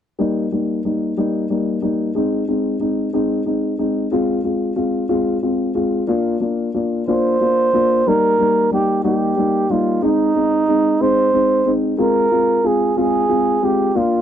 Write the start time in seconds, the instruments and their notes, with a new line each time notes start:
0.19 upright piano G3 A#3 D#4
0.52 upright piano G3 A#3 D#4
0.85 upright piano G3 A#3 D#4
1.17 upright piano G3 A#3 D#4
1.50 upright piano G3 A#3 D#4
1.82 upright piano G3 A#3 D#4
2.15 upright piano G#3 C4 D#4
2.48 upright piano G#3 C4 D#4
2.80 upright piano G#3 C4 D#4
3.13 upright piano G#3 C4 D#4
3.46 upright piano G#3 C4 D#4
3.78 upright piano G#3 C4 D#4
4.11 upright piano G#3 C4 F4
4.44 upright piano G#3 C4 F4
4.76 upright piano G#3 C4 F4
5.09 upright piano G#3 C4 F4
5.43 upright piano G#3 C4 F4
5.74 upright piano G#3 C4 F4
6.07 upright piano A#3 D4 F4
6.40 upright piano A#3 D4 F4
6.74 upright piano A#3 D4 F4
7.08 upright piano A#3 D4 F4, flugelhorn C5
7.40 upright piano A#3 D4 F4
7.73 upright piano A#3 D4 F4
8.07 upright piano G3 A#3 D#4, flugelhorn A#4
8.38 upright piano G3 A#3 D#4
8.71 upright piano G3 A#3 D#4, flugelhorn G4
9.04 upright piano G3 A#3 D#4, flugelhorn G4
9.37 upright piano G3 A#3 D#4
9.70 upright piano G3 A#3 D#4, flugelhorn F4
10.02 upright piano G#3 C4 D#4, flugelhorn D#4
10.35 upright piano G#3 C4 D#4
10.68 upright piano G#3 C4 D#4
11.01 upright piano G#3 C4 D#4, flugelhorn C5
11.33 upright piano G#3 C4 D#4
11.66 upright piano G#3 C4 D#4
11.98 upright piano G#3 C4 F4, flugelhorn A#4
12.31 upright piano G#3 C4 F4
12.63 upright piano G#3 C4 F4, flugelhorn G#4
12.97 upright piano G#3 C4 F4, flugelhorn G#4
13.29 upright piano G#3 C4 F4
13.62 upright piano G#3 C4 F4, flugelhorn G4
13.95 upright piano A#3 D4 F4, flugelhorn F4